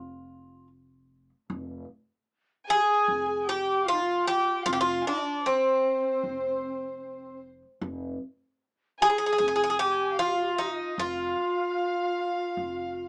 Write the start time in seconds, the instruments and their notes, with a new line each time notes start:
Already playing: upright bass F1, bouzouki F4
1.50 upright bass F1
2.68 ney G#4, bouzouki G#4, violin section G#5
2.75 ney G4
2.81 ney G#4 A4
3.08 upright bass F1
3.26 ney G#4 A4
3.47 ney G4, bouzouki G4, violin section G5
3.86 ney F4, bouzouki F4, violin section F5
3.93 ney D#4
4.01 ney F4
4.26 bouzouki G4, violin section G5
4.65 upright bass F1, bouzouki F4, ney F4, violin section F5
4.73 bouzouki G4
4.80 bouzouki F4, ney F#4
4.85 ney F4
5.05 ney D4, bouzouki D4, violin section D5
5.13 ney D#4
5.20 ney D4
5.45 bouzouki C4, ney C4, violin section C5
6.23 upright bass F1
7.81 upright bass F1
9.00 ney G#4, bouzouki G#4, violin section G#5
9.10 bouzouki G#4
9.18 bouzouki G#4
9.26 bouzouki G#4
9.33 bouzouki G#4
9.38 upright bass F1, bouzouki G#4
9.48 bouzouki G#4
9.56 bouzouki G#4
9.64 bouzouki G#4
9.70 bouzouki G#4
9.79 bouzouki G4, ney G#4
9.84 ney G4
10.18 bouzouki F4, ney F4, violin section F5
10.27 ney G4
10.35 ney F4
10.42 ney G4
10.51 ney F4
10.58 bouzouki D#4, ney G4, violin section D#5
10.68 ney F4 F#4
10.97 upright bass F1, ney F4, bouzouki F4, violin section F5
12.57 upright bass F1